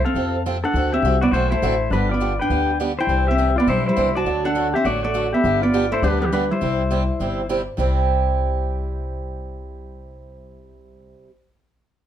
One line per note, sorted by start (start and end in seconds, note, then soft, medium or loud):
0.04 0.42 C4 medium
0.04 0.42 A4 medium
0.04 0.42 F5 medium
0.15 0.62 F2 medium
0.15 0.35 C3 medium
0.15 0.36 F3 medium
0.15 0.36 C4 medium
0.15 0.36 F4 medium
0.15 0.36 A4 medium
0.46 0.56 C3 medium
0.46 0.57 F3 medium
0.46 0.57 C4 medium
0.46 0.57 F4 medium
0.46 0.57 A4 medium
0.64 0.91 D4 medium
0.64 0.91 A4 medium
0.64 0.94 F#5 medium
0.74 0.97 D2 medium
0.74 0.95 D3 medium
0.74 0.95 A3 medium
0.74 0.95 C4 medium
0.74 0.95 F#4 medium
0.74 0.95 A4 medium
0.92 1.20 C4 medium
0.92 1.20 G4 medium
0.92 1.21 E5 medium
1.02 1.28 C2 medium
1.02 1.15 D3 medium
1.02 1.15 A3 medium
1.02 1.15 C4 medium
1.02 1.15 F#4 medium
1.02 1.16 A4 medium
1.21 1.32 B3 medium
1.21 1.30 F#4 medium
1.21 1.33 D5 medium
1.31 1.57 B1 medium
1.31 1.53 D3 soft
1.31 1.53 A3 medium
1.31 1.50 A3 medium
1.31 1.53 C4 medium
1.31 1.49 F#4 medium
1.31 1.53 F#4 medium
1.31 1.54 A4 medium
1.31 1.50 C5 loud
1.50 1.89 A3 medium
1.50 1.88 E4 medium
1.50 1.93 C5 loud
1.62 1.87 A1 medium
1.62 1.73 D3 medium
1.62 1.74 A3 medium
1.62 1.74 C4 medium
1.62 1.74 F#4 medium
1.62 1.74 A4 medium
1.90 2.38 G1 medium
1.90 2.12 D3 medium
1.90 2.12 G3 medium
1.90 2.10 G3 medium
1.90 2.12 B3 medium
1.90 2.08 D4 medium
1.90 2.12 D4 medium
1.90 2.12 G4 medium
1.90 2.11 B4 medium
2.09 2.37 F4 medium
2.09 2.41 D5 medium
2.14 2.41 B3 medium
2.20 2.32 D3 medium
2.20 2.32 G3 medium
2.20 2.32 B3 medium
2.20 2.32 D4 medium
2.20 2.32 G4 medium
2.39 2.78 D4 medium
2.39 2.77 B4 medium
2.39 2.78 G5 loud
2.49 2.97 D2 medium
2.49 2.70 D3 medium
2.49 2.70 G3 medium
2.49 2.70 B3 medium
2.49 2.70 D4 medium
2.49 2.71 G4 medium
2.80 2.91 D3 medium
2.80 2.91 G3 medium
2.80 2.91 B3 medium
2.80 2.91 D4 medium
2.80 2.91 G4 medium
2.99 3.26 E4 medium
2.99 3.26 C5 medium
2.99 3.27 G5 loud
3.07 3.55 C2 medium
3.07 3.29 C3 medium
3.07 3.29 E3 medium
3.07 3.29 C4 medium
3.07 3.29 D4 medium
3.27 3.56 C4 medium
3.27 3.54 G4 medium
3.27 3.55 E5 loud
3.38 3.49 C3 medium
3.38 3.49 E3 medium
3.38 3.50 C4 medium
3.38 3.50 D4 medium
3.56 3.70 B3 medium
3.56 3.66 F4 medium
3.56 3.68 D5 medium
3.67 3.92 B1 medium
3.67 3.88 C3 medium
3.67 3.88 E3 medium
3.67 3.87 G3 medium
3.67 3.88 C4 medium
3.67 3.88 D4 medium
3.67 3.85 E4 medium
3.67 3.86 C5 loud
3.86 4.15 G3 medium
3.86 4.13 E4 medium
3.86 4.17 C5 loud
3.96 4.22 C2 medium
3.96 4.08 C3 medium
3.96 4.08 E3 medium
3.96 4.08 C4 medium
3.96 4.08 D4 medium
4.15 4.43 F#4 medium
4.15 4.43 D5 medium
4.15 4.46 A5 loud
4.25 4.72 D2 medium
4.25 4.46 D3 medium
4.25 4.46 F#3 medium
4.25 4.46 A3 medium
4.25 4.46 D4 medium
4.25 4.47 F#4 medium
4.45 4.72 D4 loud
4.45 4.72 A4 medium
4.45 4.76 F#5 medium
4.55 4.67 D3 medium
4.55 4.67 F#3 medium
4.55 4.67 A3 medium
4.55 4.67 D4 medium
4.55 4.67 F#4 medium
4.74 4.87 C4 medium
4.74 4.84 G4 medium
4.74 4.86 E5 medium
4.84 5.32 A1 medium
4.84 5.05 D3 medium
4.84 5.05 F#3 medium
4.84 5.05 A3 medium
4.84 5.03 A3 medium
4.84 5.05 D4 medium
4.84 5.02 F#4 medium
4.84 5.05 F#4 medium
4.84 5.03 D5 loud
5.03 5.31 A3 medium
5.03 5.30 F#4 medium
5.03 5.34 D5 loud
5.14 5.25 D3 medium
5.14 5.26 F#3 medium
5.14 5.26 A3 medium
5.14 5.26 D4 medium
5.14 5.26 F#4 medium
5.33 5.61 B3 medium
5.33 5.60 G4 medium
5.33 5.63 E5 loud
5.44 5.91 G1 loud
5.44 5.64 D3 medium
5.44 5.64 G3 medium
5.44 5.64 B3 medium
5.44 5.64 D4 medium
5.44 5.65 G4 medium
5.62 5.90 B3 medium
5.62 5.89 F4 medium
5.62 5.93 D5 medium
5.73 5.84 D3 medium
5.73 5.85 G3 medium
5.73 5.85 B3 medium
5.73 5.85 D4 medium
5.73 5.85 G4 medium
5.92 6.02 A3 medium
5.92 6.02 E4 medium
5.92 6.03 C5 medium
6.02 6.49 D2 medium
6.02 6.23 D3 medium
6.02 6.23 G3 medium
6.02 6.20 G3 medium
6.02 6.23 B3 medium
6.02 6.20 D4 medium
6.02 6.23 D4 medium
6.02 6.23 G4 medium
6.02 6.21 B4 loud
6.21 6.31 E3 medium
6.21 6.31 B3 medium
6.21 6.32 G4 medium
6.32 6.43 D3 medium
6.32 6.49 G3 medium
6.32 6.44 G3 medium
6.32 6.44 B3 medium
6.32 6.49 D4 medium
6.32 6.44 D4 medium
6.32 6.44 G4 medium
6.32 6.52 B4 medium
6.51 7.46 G3 medium
6.51 7.46 E4 medium
6.51 7.46 C5 medium
6.61 7.08 C2 medium
6.61 6.81 C3 medium
6.61 6.81 G3 medium
6.61 6.81 C4 medium
6.61 6.82 E4 medium
6.61 6.82 G4 medium
6.91 7.02 C3 medium
6.91 7.02 G3 medium
6.91 7.02 C4 medium
6.91 7.02 E4 medium
6.91 7.02 G4 medium
7.19 7.67 G1 medium
7.19 7.40 C3 medium
7.19 7.40 G3 medium
7.19 7.40 C4 medium
7.19 7.40 E4 medium
7.19 7.41 G4 medium
7.49 7.61 C3 medium
7.49 7.61 G3 medium
7.49 7.61 C4 medium
7.49 7.61 E4 medium
7.49 7.61 G4 medium
7.77 11.14 C2 medium
7.77 11.27 C3 medium
7.77 11.28 G3 medium
7.77 11.29 C4 medium
7.77 11.30 E4 medium
7.77 11.30 G4 medium